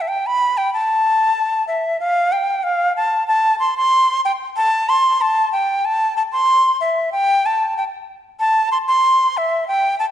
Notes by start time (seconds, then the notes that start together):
0.01 E5
0.08 G5
0.27 B5
0.57 G5
0.74 A5
1.68 E5
2.00 F5
2.32 G5
2.63 F5
2.96 A5
3.28 A5
3.60 C6
3.77 C6
4.25 G5
4.57 A5
4.89 C6
5.21 A5
5.52 G5
5.85 A5
6.17 A5
6.32 C6
6.81 E5
7.12 G5
7.46 A5
7.77 G5
8.40 A5
8.72 C6
8.88 C6
9.37 E5
9.68 G5
9.99 A5